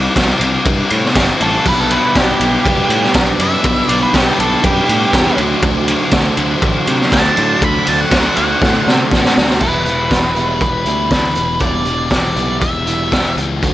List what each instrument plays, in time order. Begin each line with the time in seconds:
Already playing: distorted electric guitar C3 G3 C4 E4
0.16 picked electric bass C2, distorted electric guitar C3 G3 C4 E4, kick, snare, ride
0.40 picked electric bass C2, distorted electric guitar C3 G3 C4, ride
0.45 distorted electric guitar E4
0.65 picked electric bass G2, distorted electric guitar C3 G3 C4 E4, kick, ride
0.90 picked electric bass A2, ride
1.05 snare
1.15 picked electric bass G1, distorted electric guitar C3 G3 C4 E4, kick, snare, ride
1.41 picked electric bass A1, distorted electric guitar C3 G3 C4 E4, lead electric guitar A4, ride
1.65 picked electric bass B1, distorted electric guitar B2 G3, overdriven electric guitar B3 D4 G4 B4, lead electric guitar B4, kick, crash
1.80 lead electric guitar A4
1.90 lead electric guitar B4, ride
2.15 picked electric bass B1, distorted electric guitar B2 G3, overdriven electric guitar B3 D4 G4 B4, lead electric guitar G4, kick, snare, ride
2.40 picked electric bass B1, distorted electric guitar B2 G3, overdriven electric guitar B3 D4 G4 B4, ride
2.65 picked electric bass F#1, distorted electric guitar B2 G3, overdriven electric guitar B3 D4 G4 B4, kick, ride
2.89 picked electric bass A2, ride
3.03 snare
3.14 picked electric bass B1, distorted electric guitar B2 G3, overdriven electric guitar B3 D4 G4 B4, kick, snare, ride
3.39 picked electric bass F#2, distorted electric guitar B2 G3, overdriven electric guitar B3 D4 G4 B4, lead electric guitar E5, ride
3.63 picked electric bass B1, distorted electric guitar B2 G3, overdriven electric guitar B3 D4 G4 B4, kick, ride
3.88 picked electric bass B1, lead electric guitar D5, ride
4.03 lead electric guitar B4
4.13 picked electric bass B1, distorted electric guitar B2 G3, overdriven electric guitar B3 D4 G4 B4, lead electric guitar G4, kick, snare, ride
4.37 picked electric bass B1, distorted electric guitar B2 G3, overdriven electric guitar B3 D4 G4 B4, lead electric guitar A4, ride
4.62 picked electric bass F#2, distorted electric guitar B2 G3, overdriven electric guitar B3 D4 G4 B4, lead electric guitar G4, kick, ride
4.89 picked electric bass A2, ride
5.12 picked electric bass E2, distorted electric guitar B2 G3, overdriven electric guitar B3 D4 G4 B4, kick, snare, ride
5.38 picked electric bass D2, overdriven electric guitar D3 F#3 A3 D4 F#4 C5, ride
5.62 picked electric bass D2, overdriven electric guitar D3 F#3 A3 D4 F#4 C5, kick, ride
5.88 ride
6.11 picked electric bass D2, overdriven electric guitar D3 F#3 A3 D4 F#4 C5, kick, snare, ride
6.37 picked electric bass D2, overdriven electric guitar D3 F#3 A3 D4 F#4 C5, ride
6.62 picked electric bass A1, overdriven electric guitar D3 F#3 A3 D4 F#4 C5, kick, ride
6.87 picked electric bass C3, ride
7.02 snare
7.12 picked electric bass D2, overdriven electric guitar D3 F#3 A3 D4 F#4 C5, lead electric guitar A5, kick, snare, ride
7.37 picked electric bass A2, overdriven electric guitar D3 F#3 A3 D4 F#4 C5, ride
7.61 picked electric bass D2, overdriven electric guitar D3 F#3 A3 D4 F#4 C5, lead electric guitar B5, kick, ride
7.87 picked electric bass D2, lead electric guitar A5, ride
8.01 lead electric guitar F#5
8.11 picked electric bass D2, overdriven electric guitar D3 F#3 A3 D4 F#4 C5, kick, snare, ride
8.37 picked electric bass D2, overdriven electric guitar D3 F#3 A3 D4 F#4 C5, lead electric guitar F#5, ride
8.62 picked electric bass A2, overdriven electric guitar D3 F#3 A3 D4 F#4 C5, kick, snare
8.87 picked electric bass C3, snare
9.11 picked electric bass A1, overdriven electric guitar D3 F#3 A3 D4 F#4 C5, kick, snare
9.25 snare
9.37 picked electric bass D2, overdriven electric guitar D3 F#3 A3 D4 F#4 C5, snare
9.49 snare
9.60 picked electric bass E1, overdriven electric guitar E3 G3 B3 E4, distorted electric guitar G4, lead electric guitar B4, kick, crash
9.86 picked electric bass E1, distorted electric guitar B3 E4 G4, muted overdriven electric guitar stroke, closed hi-hat
10.10 picked electric bass E1, muted overdriven electric guitar stroke, kick, snare, closed hi-hat
10.35 picked electric bass E1, overdriven electric guitar E3 G3 B3 E4, distorted electric guitar G4, closed hi-hat
10.61 picked electric bass E1, lead electric guitar B4, muted overdriven electric guitar stroke, kick, closed hi-hat
10.85 picked electric bass D2, overdriven electric guitar E3 G3 B3 E4, distorted electric guitar G4, closed hi-hat
11.10 picked electric bass D2, distorted electric guitar E3 B3 E4 G4, muted overdriven electric guitar stroke, kick, snare, closed hi-hat
11.35 picked electric bass E1, distorted electric guitar B3 E4 G4, muted overdriven electric guitar stroke, closed hi-hat
11.60 picked electric bass E1, overdriven electric guitar E3 G3 B3 E4, distorted electric guitar G4, lead electric guitar D5, kick, closed hi-hat
11.85 picked electric bass E1, distorted electric guitar B3 E4 G4, muted overdriven electric guitar stroke, closed hi-hat
12.10 picked electric bass E1, lead electric guitar D5, muted overdriven electric guitar stroke, kick, snare, closed hi-hat
12.36 picked electric bass B1, overdriven electric guitar E3 G3 B3 E4, distorted electric guitar G4, closed hi-hat
12.61 picked electric bass E1, lead electric guitar E5, muted overdriven electric guitar stroke, kick, closed hi-hat
12.87 overdriven electric guitar E3 G3 B3 E4, distorted electric guitar G4, closed hi-hat
13.12 picked electric bass E1, distorted electric guitar E3 B3 E4 G4, muted overdriven electric guitar stroke, kick, snare, closed hi-hat
13.37 picked electric bass C#2, distorted electric guitar B3 E4 G4, muted overdriven electric guitar stroke, closed hi-hat
13.62 picked electric bass D2, overdriven electric guitar D3 A3 C4 F#4, distorted electric guitar F#3 D4, kick, closed hi-hat